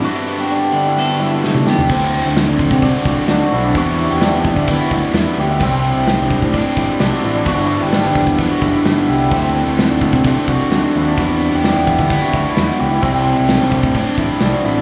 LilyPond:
<<
  \new Staff \with { instrumentName = "Hammered dulcimer" } { \time 4/4 \key g \major \tempo 4 = 129 fis'16 e'8 g'16 d'16 b8 e'8 fis'16 e'16 e'8 b16 g'16 e'16 | c'8 r16 e'8 d'8 c'16 d'8 fis'8 d'16 fis'16 e'16 d'16 | fis'16 e'8 g'16 d'16 b8 e'8 fis'16 e'16 e'8 b16 g'16 e'16 | c'8 r16 e'8 d'8 c'16 d'8 e'8 d'16 fis'16 e'16 d'16 |
fis'16 e'8 g'16 d'16 b8 e'8 fis'16 e'16 e'8 b16 g'16 e'16 | c'8 r16 e'8 d'8 c'16 d'8 fis'8 d'16 fis'16 e'16 d'16 | fis'16 e'8 g'16 d'16 b8 e'8 fis'16 e'16 e'8 b16 g'16 e'16 | c'8 r16 e'8 d'8 c'16 d'8 e'8 d'16 fis'16 e'16 d'16 | }
  \new Staff \with { instrumentName = "Clean electric guitar" } { \time 4/4 \key g \major << { r8 b16 d'4~ d'16 a'4. b8 | r1 | r1 | r1 |
r1 | r1 | r1 | r1 | } \\ { <g, g>4. d4 g,4. | r1 | r1 | r1 |
r1 | r1 | r1 | r1 | } >> }
  \new Staff \with { instrumentName = "Overdriven electric guitar" } { \time 4/4 \key g \major <g, d g b d'>2 <g, d g b d'>2 | <d a c' fis'>2 <d a c' fis'>2 | <e g b e'>2 <e g b e'>2 | <c g c' d'>2 <c g c' d'>2 |
<g, d g b d'>2 <g, d g b d'>2 | <d a c' fis'>2 <d a c' fis'>2 | <e g b e'>2 <e g b e'>2 | <c g c' d'>2 <c g c' d'>2 | }
  \new Staff \with { instrumentName = "Fingered electric bass" } { \clef bass \time 4/4 \key g \major r1 | d,8. d,8 d,8 c8 r16 c,16 r16 d,16 r16 b,,8 | e,8. e,8 e,8 d8 r16 d,16 r16 e,16 r16 d,8 | c,8. c,8 c,8 a,8 r16 a,,16 r16 c,16 r16 a,,8 |
g,,8. g,,8 g,,8 e,8 r16 fis,,16 r16 g,,16 r16 c,8 | d,8. d,8 d,8 c8 r16 c,16 r16 d,16 r16 ees,8 | e,8. e,8 e,8 d8 r16 d,16 r16 e,16 r16 cis,8 | c,8. c,8 c,8 a,8 r16 a,,16 r16 c,16 r16 a,,8 | }
  \new DrumStaff \with { instrumentName = "Drums" } \drummode { \time 4/4 r4 r4 r4 sn16 toml16 sn16 tomfh16 | <cymc bd>4 <cymc sn>8 bd16 <bd sn>16 <cymc bd>8 bd8 <cymc sn>4 | <cymc bd>4 <cymc sn>8 bd16 bd16 <cymc bd>8 bd8 <cymc sn>4 | <cymc bd>4 <cymc sn>8 bd16 bd16 <cymc bd>8 bd8 <cymc sn>4 |
<cymc bd>4 <cymc sn>8 bd16 <bd sn>16 <cymc bd>8 bd8 <cymc sn>4 | <cymc bd>4 <cymc sn>8 bd16 <bd sn>16 <cymc bd>8 bd8 <cymc sn>4 | <cymc bd>4 <cymc sn>8 bd16 <bd sn>16 <cymc bd>8 bd8 <cymc sn>4 | <cymc bd>4 <cymc sn>8 bd16 bd16 <cymc bd>8 bd8 <cymc sn>4 | }
>>